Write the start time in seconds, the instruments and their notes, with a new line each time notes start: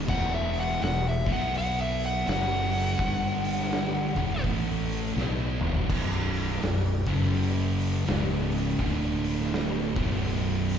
0.08 fingered electric bass E1, distorted electric guitar E2 B2 E3, lead electric guitar F#5, kick, crash
0.35 lead electric guitar E5
0.54 open hi-hat
0.60 lead electric guitar F#5
0.70 snare
0.81 fingered electric bass E1, distorted electric guitar E2 B2, lead electric guitar F#5, snare, open hi-hat
1.09 lead electric guitar E5
1.26 fingered electric bass B1, distorted electric guitar B2 F#3 B3, kick, open hi-hat
1.33 lead electric guitar F#5
1.54 lead electric guitar F#5, open hi-hat
1.81 lead electric guitar E5
1.99 open hi-hat
2.06 lead electric guitar F#5
2.27 fingered electric bass F#1, distorted electric guitar F#2 C#3 F#3, lead electric guitar F#5, snare, open hi-hat
2.72 open hi-hat
2.98 fingered electric bass G1, distorted electric guitar G2 D3 G3, kick, open hi-hat
3.44 open hi-hat
3.60 snare
3.71 snare, open hi-hat
4.16 fingered electric bass E1, distorted electric guitar E2 B2 E3, kick, open hi-hat
4.44 fingered electric bass A1, distorted electric guitar A2 E3 A3, kick, open hi-hat
4.89 open hi-hat
5.16 fingered electric bass B1, distorted electric guitar B2 F#3 B3, snare
5.61 fingered electric bass E1, distorted electric guitar E2 B2 E3, mid tom
5.75 floor tom
5.89 fingered electric bass B0, distorted electric guitar B1 F#2 B2, kick, crash
6.34 open hi-hat
6.50 snare
6.61 fingered electric bass B0, distorted electric guitar B1 F#2, snare, open hi-hat
7.06 fingered electric bass F#1, distorted electric guitar F#2 C#3 F#3, kick, open hi-hat
7.34 open hi-hat
7.80 open hi-hat
8.06 fingered electric bass C#1, distorted electric guitar C#2 G#2 C#3, snare, open hi-hat
8.51 open hi-hat
8.78 fingered electric bass D1, distorted electric guitar D2 A2 D3, kick, open hi-hat
9.24 open hi-hat
9.41 snare
9.52 snare, open hi-hat
9.96 fingered electric bass B0, distorted electric guitar B1 F#2 B2, kick, open hi-hat
10.24 open hi-hat
10.69 open hi-hat